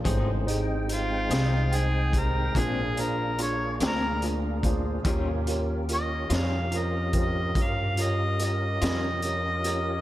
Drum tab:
HH |xxxxxxxxxxxx|xxxxxxxxxxxx|
SD |---o-----o--|---o-----o--|
BD |o----oo----o|o----oo-----|